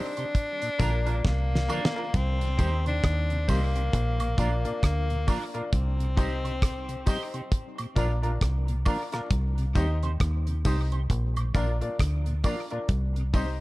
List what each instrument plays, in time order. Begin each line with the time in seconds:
Already playing: tenor saxophone D4
0.17 tonewheel organ C3, clean electric guitar D#4 G4 C5, closed hi-hat
0.35 kick, closed hi-hat
0.62 tonewheel organ A#2, closed hi-hat
0.79 fingered electric bass A#1, tonewheel organ D3 F3 A#3, upright piano A#3 D4 F4 A#4, clean electric guitar D4 F4 A#4, kick, closed hi-hat, tambourine
1.06 tonewheel organ A#2, upright piano A#3 D4 F4 A#4, clean electric guitar D4 F4 A#4, closed hi-hat
1.25 fingered electric bass C2, tenor saxophone A#3, kick, snare
1.52 tonewheel organ A#2, snare
1.68 tonewheel organ D3 F3 A#3, upright piano A#3 D4 F4 A#4, clean electric guitar D4 F4 A#4, tambourine, high woodblock
1.85 snare
1.95 upright piano A#3 D4 F4 A#4, clean electric guitar D4 F4 A#4
2.14 fingered electric bass C2, tenor saxophone C4, kick, closed hi-hat
2.41 tonewheel organ C3, closed hi-hat
2.58 fingered electric bass D#2, tonewheel organ D#3 G3 C4, upright piano C4 D#4 G4 C5, clean electric guitar D#4 G4 C5, kick, closed hi-hat, tambourine
2.86 tonewheel organ C3, tenor saxophone D4, clean electric guitar D#4 G4 C5, closed hi-hat
3.04 fingered electric bass D#2, kick, cross-stick, closed hi-hat
3.30 tonewheel organ C3, closed hi-hat
3.48 fingered electric bass C2, tonewheel organ D#3 G3 C4, tenor saxophone A#3, upright piano C4 D#4 G4 C5, clean electric guitar D#4 G4 C5, kick, open hi-hat, tambourine
3.75 tonewheel organ C3, clean electric guitar D#4 G4 C5, closed hi-hat
3.93 fingered electric bass A#1, kick, closed hi-hat
4.20 tonewheel organ A#2, closed hi-hat, high woodblock
4.37 fingered electric bass A#1, tonewheel organ F3 A#3 D4, upright piano D4 F4 A#4 D5, clean electric guitar D4 F4 A#4, kick, closed hi-hat, tambourine
4.64 tonewheel organ A#2, upright piano D4 F4 A#4 D5, closed hi-hat
4.83 fingered electric bass D2, tenor saxophone A#3, kick, cross-stick, closed hi-hat
5.10 tonewheel organ A#2, closed hi-hat
5.27 tonewheel organ F3 A#3 D4, upright piano D4 F4 A#4 D5, clean electric guitar D4 F4 A#4, kick, open hi-hat, tambourine, high woodblock
5.54 tonewheel organ A#2, upright piano D4 F4 A#4 D5, clean electric guitar D4 F4 A#4, closed hi-hat
5.73 fingered electric bass C2, tenor saxophone C4, kick, closed hi-hat
5.99 tonewheel organ C3, closed hi-hat
6.17 tonewheel organ G3 C4 D#4, upright piano D#4 G4 C5 D#5, clean electric guitar D#4 G4 C5, kick, closed hi-hat, tambourine
6.44 tonewheel organ C3, clean electric guitar D#4 G4 C5, closed hi-hat
6.62 kick, cross-stick, closed hi-hat
6.89 tonewheel organ C3, closed hi-hat
7.06 tonewheel organ G3 C4 D#4, upright piano D#4 G4 C5 D#5, clean electric guitar D#4 G4 C5, kick, open hi-hat, tambourine
7.34 tonewheel organ C3, clean electric guitar D#4 G4 C5, closed hi-hat
7.52 kick, closed hi-hat
7.78 tonewheel organ A#2, closed hi-hat, high woodblock
7.95 fingered electric bass A#1, tonewheel organ F3 A#3 D4, upright piano D4 F4 A#4 D5, clean electric guitar D4 F4 A#4, kick, closed hi-hat, tambourine
8.22 tonewheel organ A#2, upright piano D4 F4 A#4 D5, clean electric guitar D4 F4 A#4, closed hi-hat
8.41 fingered electric bass C2, kick, cross-stick, closed hi-hat
8.68 tonewheel organ A#2, closed hi-hat
8.85 tonewheel organ F3 A#3 D4, upright piano D4 F4 A#4 D5, clean electric guitar D4 F4 A#4, kick, open hi-hat, tambourine, high woodblock
9.12 tonewheel organ A#2, upright piano D4 F4 A#4 D5, clean electric guitar D4 F4 A#4, cross-stick, closed hi-hat
9.30 fingered electric bass C2, kick, closed hi-hat
9.58 tonewheel organ C3, closed hi-hat
9.75 fingered electric bass D#2, tonewheel organ G3 C4 D#4, upright piano D#4 G4 C5 D#5, clean electric guitar D#4 G4 C5, kick, closed hi-hat, tambourine
10.03 tonewheel organ C3, clean electric guitar D#4 G4 C5, closed hi-hat
10.20 fingered electric bass D#2, kick, cross-stick, closed hi-hat
10.47 tonewheel organ C3, closed hi-hat
10.65 fingered electric bass C2, tonewheel organ G3 C4 D#4, upright piano D#4 G4 C5 D#5, clean electric guitar D#4 G4 C5, kick, open hi-hat, tambourine
10.92 tonewheel organ C3, clean electric guitar D#4 G4 C5, closed hi-hat
11.10 fingered electric bass A#1, kick, closed hi-hat
11.36 tonewheel organ A#2, closed hi-hat, high woodblock
11.54 fingered electric bass A#1, tonewheel organ F3 A#3 D4, upright piano D4 F4 A#4 D5, clean electric guitar D4 F4 A#4, kick, closed hi-hat, tambourine
11.81 tonewheel organ A#2, upright piano D4 F4 A#4 D5, closed hi-hat
11.99 fingered electric bass D2, kick, cross-stick, closed hi-hat
12.26 tonewheel organ A#2, closed hi-hat
12.44 tonewheel organ F3 A#3 D4, upright piano D4 F4 A#4 D5, clean electric guitar D4 F4 A#4, kick, open hi-hat, tambourine, high woodblock
12.70 tonewheel organ A#2, upright piano D4 F4 A#4 D5, clean electric guitar D4 F4 A#4, closed hi-hat
12.89 fingered electric bass C2, kick, closed hi-hat
13.16 tonewheel organ C3, closed hi-hat
13.33 tonewheel organ G3 C4 D#4, upright piano D#4 G4 C5 D#5, clean electric guitar D#4 G4 C5, kick, open hi-hat, tambourine